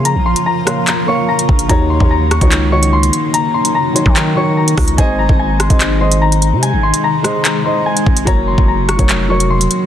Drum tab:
HH |x--x--x-x----x-x|x-----xxx--x-xx-|x--x--x-x----xox|x-----xxx--x-xx-|
CP |--------x-------|--------x-------|--------x-------|--------x-------|
SD |------r---------|------r---------|--------------r-|------r---------|
BD |--------------o-|o--o---o--------|-------o------o-|o--o---o--------|

HH |x--x--x-x----x-x|x-----xxx--x-xx-|
CP |--------x-------|--------x-------|
SD |------r---------|------r---------|
BD |--------------o-|o--o---o--------|